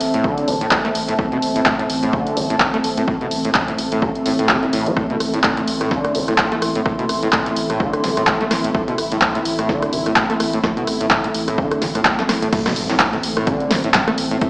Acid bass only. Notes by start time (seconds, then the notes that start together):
0.14 A2
0.24 D3
0.48 A1
0.61 A2
0.71 A2
0.85 A3
1.08 A2
1.19 A2
1.32 B2
1.56 A2
1.66 A2
1.79 A2
2.03 A2
2.13 D3
2.37 A1
2.50 A2
2.60 A2
2.74 A3
2.98 A2
3.08 A2
3.21 B2
3.45 A2
3.55 A2
3.68 A2
3.92 A2
4.02 D3
4.26 A2
4.39 A2
4.49 C3
4.63 A2
4.73 A2
4.86 G3
4.97 A2
5.10 B2
5.34 A2
5.44 A2
5.57 A2
5.81 A2
5.91 D3
6.15 A1
6.28 A2
6.38 A2
6.52 A3
6.75 A2
6.86 A2
6.99 B2
7.23 A2
7.33 A2
7.46 A2
7.70 A2
7.80 D3
8.04 A1
8.17 A2
8.27 A2
8.41 A3
8.64 A2
8.75 A2
8.88 B2
9.12 A2
9.22 A2
9.35 A2
9.59 A2
9.69 D3
9.93 A1
10.06 A2
10.16 A2
10.30 A3
10.54 A2
10.64 A2
10.77 B2
11.01 A2
11.11 A2
11.24 A2
11.48 A2
11.58 D3
11.82 A1
11.95 A2
12.05 A2
12.19 A3
12.42 A2
12.53 A2
12.66 B2
12.90 A2
13.00 A2
13.13 A2
13.37 A2
13.47 D3
13.71 A1
13.84 A2
13.94 A2
14.08 A3
14.31 A2
14.41 A2